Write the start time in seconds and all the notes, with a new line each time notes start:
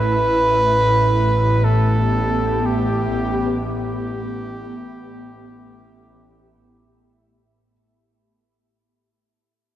Already playing: A1 A2 A3 E4 B4 E5
0.54 B3
0.86 G4
1.64 A4
2.66 G4
3.46 B4
3.65 G4